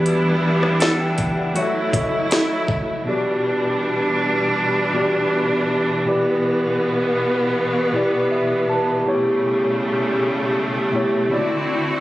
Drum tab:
HH |x---x-x-x-x-x---|----------------|----------------|----------------|
SD |---ro-------o---|----------------|----------------|----------------|
BD |------o---o---o-|----------------|----------------|----------------|